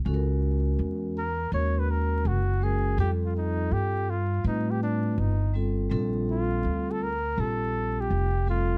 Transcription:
0.05 C#2 G#3 C#4 F#4 A4
0.14 A#4
0.79 E2
1.18 A#4
1.51 D#2 G#3 C#4 F#4 A#4 C#5
1.79 B4
1.91 A#4
2.25 F#1 F#4
2.61 G#3 C#4 F#4 G#4 A#4
2.97 F2 G3 C4 F4 G4 A4
3.25 F4
3.37 D#4
3.71 G2 G4
4.10 F4
4.43 A2 G3 C4 D#4 F4 B4
4.71 G4
4.83 D4
5.18 G1 D#4
5.53 G3 C4 F4 A4
5.90 A#1 G3 C4 F4 A4
6.30 F4
6.64 D2
6.91 A4
7.03 A#4
7.36 A#1 G3 C4 F4 G4
7.40 A4
8.00 G4
8.10 F1
8.46 G3 C4 F4 A4
8.50 F4

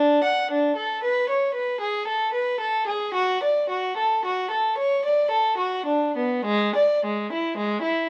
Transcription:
Already playing: D4
0.24 F#5
0.51 D4
0.76 A4
1.03 B4
1.29 C#5
1.54 B4
1.81 G#4
2.08 A4
2.34 B4
2.60 A4
2.87 G#4
3.14 F#4
3.43 D5
3.70 F#4
3.97 A4
4.25 F#4
4.51 A4
4.78 C#5
5.05 D5
5.31 A4
5.58 F#4
5.86 D4
6.17 B3
6.45 G#3
6.76 D5
7.05 G#3
7.33 E4
7.57 G#3
7.82 E4

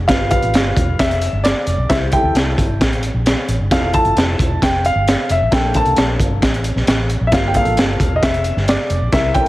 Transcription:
0.08 G1 F4 G4 B4 F5, kick, snare, closed hi-hat
0.31 F4 G4 B4 F5, kick, closed hi-hat
0.42 A1, closed hi-hat
0.53 G1, snare, closed hi-hat
0.76 E1, kick, closed hi-hat
0.99 F1 E5, kick, snare, closed hi-hat
1.11 closed hi-hat
1.21 closed hi-hat
1.33 G1
1.44 D5, snare, closed hi-hat
1.67 F1, closed hi-hat
1.78 B1
1.89 C2 E4 G4 C5 E5, kick, snare, closed hi-hat
2.12 E4 G4 A4 G5, kick, closed hi-hat
2.23 D2
2.34 C2, snare, closed hi-hat
2.58 G1, kick, closed hi-hat
2.81 A1, kick, snare, closed hi-hat
2.93 closed hi-hat
3.03 closed hi-hat
3.14 A#1
3.26 snare, closed hi-hat
3.48 A1, closed hi-hat
3.59 G1
3.71 F1 E4 F4 A4 F5, kick, snare, closed hi-hat
3.93 E4 F4 A4 A5, kick, closed hi-hat
4.05 G1, closed hi-hat
4.16 F1, snare, closed hi-hat
4.39 E1, kick, closed hi-hat
4.62 F1 G5, kick, snare, closed hi-hat
4.85 F5, closed hi-hat
4.95 G1
5.08 snare, closed hi-hat
5.29 F1 E5, closed hi-hat
5.41 A1
5.51 A#1 A#3 D4 A4 G5, kick, snare, closed hi-hat
5.74 A#3 D4 A4 A5, kick, closed hi-hat
5.85 C2, closed hi-hat
5.96 A#1, snare, closed hi-hat
6.19 G1, kick, closed hi-hat
6.42 A1, kick, snare, closed hi-hat
6.54 closed hi-hat
6.64 closed hi-hat
6.76 A#1, snare
6.87 A1, snare, closed hi-hat
7.10 closed hi-hat
7.21 A#1
7.27 E5
7.32 A#3 F4 G4 F5, kick, snare, closed hi-hat
7.48 G5
7.54 A#3 F4 G#4 F5, kick, closed hi-hat
7.61 A4
7.65 A1, closed hi-hat
7.77 G1, snare, closed hi-hat
8.00 E1, kick, closed hi-hat
8.16 D#5
8.23 F1 E5, kick, snare, closed hi-hat
8.34 closed hi-hat
8.44 closed hi-hat
8.56 G1, snare
8.68 D5, snare, closed hi-hat
8.90 F1, closed hi-hat
9.01 A#1
9.12 C2 C4 E4 A#4 E5, kick, snare, closed hi-hat
9.34 C4 E4 A4 G5, kick, closed hi-hat
9.41 A#4

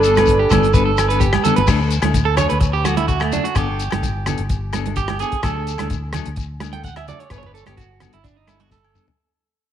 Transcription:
Already playing: G1 D4 A4
0.03 G3 B3 A4, closed hi-hat, shekere
0.08 D4 A4
0.15 A4 B4, cross-stick, closed hi-hat, high conga, low agogo, shekere
0.21 B3
0.26 kick, closed hi-hat, shekere
0.39 G4
0.50 G1 G3 B3 D4 A4, kick, cross-stick, closed hi-hat, high conga, low conga, low agogo, shekere
0.63 closed hi-hat, shekere
0.74 G3 B3 D4 A4 B4, kick, closed hi-hat, shekere
0.85 A4
0.98 cross-stick, closed hi-hat, low agogo, shekere
1.09 D4 A4 B4, closed hi-hat, shekere
1.14 B3
1.20 G4, kick, closed hi-hat, shekere
1.33 cross-stick, high conga, low agogo, shekere
1.44 G3 B3 D4 A4, closed hi-hat, low conga, shekere
1.48 A4
1.56 G1 B4, closed hi-hat, high conga
1.67 D2 A3 D4 A4, muted clean electric guitar stroke, kick, cross-stick, crash, low agogo, shekere
1.81 A3 D4 A4
1.90 closed hi-hat, shekere
2.02 D2 D4 A4, cross-stick, closed hi-hat, high conga, low agogo
2.06 A3
2.14 kick, closed hi-hat, shekere
2.25 A4
2.37 F#3 A3 D4 A4 C#5, cross-stick, closed hi-hat, low conga, low agogo, shekere
2.49 D2 B4, closed hi-hat
2.61 muted clean electric guitar stroke, kick, closed hi-hat, shekere
2.73 G4
2.85 F#3 A3 F#4 A4, muted clean electric guitar stroke, cross-stick, closed hi-hat, high conga, low agogo, shekere
2.97 A3 D4 E4 A4, closed hi-hat, high conga
3.08 F#4, kick, closed hi-hat, shekere
3.20 A3, cross-stick, low agogo
3.32 F#3 A3 D4, closed hi-hat, low conga, shekere
3.44 F#4, closed hi-hat
3.55 G1 B3 D4 G4 A4, kick, cross-stick, closed hi-hat, low agogo, shekere
3.69 D4 A4
3.79 closed hi-hat, shekere
3.91 G1 D4 A4, cross-stick, closed hi-hat, high conga, low agogo
4.03 kick, closed hi-hat, shekere
4.26 B3 D4 A4, cross-stick, closed hi-hat, low conga, low agogo, shekere
4.38 G1, closed hi-hat
4.49 kick, closed hi-hat, shekere
4.73 B3 D4 A4, cross-stick, closed hi-hat, high conga, low agogo, shekere
4.86 D4 A4, closed hi-hat, high conga
4.96 G4, kick, closed hi-hat, shekere
5.08 cross-stick, high conga, low agogo
5.19 B3 D4 G#4 A4, closed hi-hat, shekere
5.32 kick, closed hi-hat
5.43 D2 F#3 D4 A4, muted clean electric guitar stroke, kick, cross-stick, closed hi-hat, low agogo, shekere
5.56 A3 D4 A4
5.67 closed hi-hat, shekere
5.78 D2 A3 D4 A4, cross-stick, closed hi-hat, high conga, low agogo
5.90 kick, closed hi-hat, shekere
6.13 F#3 A3 D4 A4, cross-stick, closed hi-hat, low conga, low agogo, shekere
6.26 D2, closed hi-hat
6.36 kick, closed hi-hat, shekere
6.60 A3 D4, cross-stick, closed hi-hat, high conga, low agogo, shekere
6.73 A3 D4 A4 G5, closed hi-hat, high conga
6.84 F#5, kick, closed hi-hat, shekere
6.96 E5, cross-stick, high conga, low agogo
7.08 F#3 A3 D4 A4 D5, closed hi-hat, low conga, shekere
7.20 C#5, closed hi-hat
7.30 G1 G3 B3 D4 A4 B4, kick, cross-stick, closed hi-hat, low agogo, shekere
7.38 C#5
7.43 B3 D4 B4, muted clean electric guitar stroke, low conga
7.54 A4, closed hi-hat, shekere
7.66 G1 B3 D4 G4 A4, cross-stick, closed hi-hat, high conga, low agogo
7.77 F#4, kick, closed hi-hat, shekere
8.00 G3 B3 D4 A4, cross-stick, closed hi-hat, low conga, low agogo, shekere
8.13 G1 E4, closed hi-hat
8.24 D4, kick, closed hi-hat, shekere
8.37 D#4
8.47 G3 D4 E4 A4, muted clean electric guitar stroke, cross-stick, closed hi-hat, high conga, low agogo, shekere
8.60 B3 D4 F#4 A4, closed hi-hat, high conga
8.71 A4, kick, snare, shekere
8.85 low agogo
8.94 G3 B3 D4 A4, mid tom, shekere
9.08 floor tom

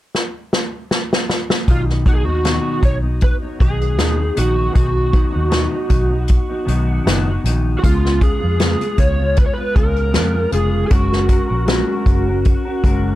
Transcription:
0.15 snare
0.53 snare
0.91 snare
1.13 snare
1.30 snare
1.50 snare
1.67 B1 B2 D#3 F#3 B3 D#4 F4, kick, closed hi-hat
1.89 snare
2.05 D#3 F#3 B3 D#4 F#4, kick, closed hi-hat
2.15 G#4
2.25 D#2 F#3 B3 D#4 F#4
2.43 B2 D#3 F#3 B3 D#4, snare, closed hi-hat
2.81 B1 D#3 F#3 B3 D#4 C#5, kick, closed hi-hat
3.03 F#3 B3 D#4
3.21 B4, kick, closed hi-hat
3.42 F#3 B3 D#4
3.59 B1 D#3 F#3 B3 D#4 G#4, kick, closed hi-hat
3.81 closed hi-hat
3.98 D#2 B2 D#3 F#3 B3 D#4, snare, closed hi-hat
4.19 F#3 B3 D#4
4.35 A#1 D#3 F#3 B3 D#4 F#4, closed hi-hat
4.72 B1 B2 D#3 F#3 B3 D#4 F#4, kick, closed hi-hat
5.13 D#3 F#3 B3 D#4, kick, closed hi-hat
5.32 D#2 F#3 B3 D#4
5.49 B2 D#3 F#3 B3 D#4, snare, closed hi-hat
5.72 F#3 B3 D#4
5.88 B1 D#3 F#3 B3 D#4, kick, closed hi-hat
6.10 F#3 B3 D#4
6.28 kick, closed hi-hat
6.50 F#3 B3 D#4
6.65 B1 D#3 F#3 B3 D#4, closed hi-hat
7.05 F#1 B2 D#3 F#3 B3 D#4, snare, closed hi-hat
7.26 F#3 B3 D#4
7.44 A#1 D#3 F#3 B3 D#4, closed hi-hat
7.79 C#3 G#3 B3 F#4
7.84 C#2 F4, kick, closed hi-hat
8.05 snare
8.21 C#3 G#3 B3 F4 G#4, kick, closed hi-hat
8.41 F2 G#3 B3 F4
8.59 C#3 G#3 B3 F4, snare, closed hi-hat
8.81 G#3 B3 F4, closed hi-hat
8.97 C#2 C#3 G#3 B3 F4 C#5, kick, closed hi-hat
9.19 G#3 B3 F4
9.37 B4, kick, closed hi-hat
9.46 C#5
9.53 B4
9.58 G#3 B3 F4
9.76 C#2 C#3 G#3 B3 F4 A#4, kick, closed hi-hat
9.96 closed hi-hat
10.13 F2 C#3 G#3 B3 F4, snare, closed hi-hat
10.35 G#3 B3 F4
10.52 F1 C#3 G#3 B3 F4 G#4, closed hi-hat
10.87 F#1 F#3 G#3 C#4 F#4 G#4, kick, closed hi-hat
10.91 A#4
11.12 snare
11.28 G#3 C#4 F#4 A#4, kick, closed hi-hat
11.49 A#1 C#4 F#4 A#4
11.66 F#3 G#3 C#4 F#4 A#4, snare, closed hi-hat
12.06 F#1 G#3 C#4 F#4 A#4, kick, closed hi-hat
12.28 C#4 F#4 A#4
12.45 kick, closed hi-hat
12.65 C#4 F#4 A#4
12.83 F#1 G#3 C#4 F#4 A#4, kick, closed hi-hat

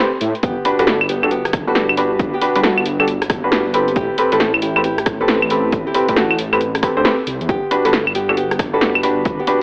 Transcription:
0.21 A2, open hi-hat
0.35 closed hi-hat
0.43 G1 B3 G4, kick, closed hi-hat
0.65 D4 F#4 G4 B4, open hi-hat
0.79 G1 D4 F#4 G4 A4 B4, closed hi-hat
0.87 snare, closed hi-hat
1.01 claves
1.09 G1 B3 G4, open hi-hat
1.23 D4 F#4 G4 A4, cross-stick, claves
1.31 B3 G4, closed hi-hat
1.45 cross-stick, closed hi-hat
1.53 G1, kick, cross-stick, open hi-hat
1.67 D4 F#4 G4 A4 B4
1.75 snare, closed hi-hat
1.89 G1, claves
1.97 D4 F#4 G4 B4, open hi-hat
2.19 G1, kick, closed hi-hat
2.33 B3 G4
2.41 D4 F#4 G4 B4, open hi-hat
2.56 G1 D4 F#4 G4 B4, closed hi-hat
2.64 F#4 A4, snare, closed hi-hat
2.78 claves
2.86 G1, open hi-hat
3.00 D4 F#4 G4 A4, cross-stick, claves
3.08 closed hi-hat
3.22 cross-stick, closed hi-hat
3.30 G1, kick, cross-stick, open hi-hat
3.44 D4 F#4 G4 B4
3.52 snare, closed hi-hat
3.66 G1
3.74 C4 G4 A4 B4, open hi-hat
3.88 closed hi-hat
3.96 A1 E4 G4, kick, closed hi-hat
4.18 C4 G4 A4 B4, open hi-hat
4.32 A1 C4 G4 A4 B4, closed hi-hat
4.40 snare, closed hi-hat
4.54 claves
4.62 A1 E4 G4, open hi-hat
4.76 C4 G4 A4 B4, cross-stick, claves
4.84 E4 G4, closed hi-hat
4.98 cross-stick, closed hi-hat
5.06 A1, kick, cross-stick, open hi-hat
5.20 C4 G4 A4 B4
5.28 snare, closed hi-hat
5.42 A1, claves
5.50 C4 G4 A4 B4, open hi-hat
5.72 A1, kick, closed hi-hat
5.87 E4 G4
5.94 C4 G4 A4 B4, open hi-hat
6.09 A1 C4 G4 A4 B4, kick, closed hi-hat
6.17 A3 F#4, snare, closed hi-hat
6.31 claves
6.39 A1, open hi-hat
6.53 C4 G4 A4 B4, cross-stick, closed hi-hat, claves
6.61 closed hi-hat
6.75 cross-stick, closed hi-hat
6.83 C4 G4 A4 B4, kick, cross-stick, open hi-hat
6.97 D2 C4 G4 A4 C5
7.05 C4 G4 A4 B4, snare, closed hi-hat
7.27 C2, open hi-hat
7.41 E2, closed hi-hat
7.49 G1 B3 G4, kick, closed hi-hat
7.71 D4 F#4 G4 B4, open hi-hat
7.85 G1 D4 F#4 G4 A4 B4, closed hi-hat
7.93 snare, closed hi-hat
8.07 claves
8.15 G1 B3 G4, open hi-hat
8.29 D4 F#4 G4 A4, cross-stick, claves
8.37 B3 G4, closed hi-hat
8.51 cross-stick, closed hi-hat
8.59 G1, kick, cross-stick, open hi-hat
8.73 D4 F#4 G4 A4 B4
8.81 snare, closed hi-hat
8.95 G1, claves
9.03 D4 F#4 G4 B4, open hi-hat
9.25 G1, kick, closed hi-hat
9.39 B3 G4
9.47 D4 F#4 G4 B4, open hi-hat

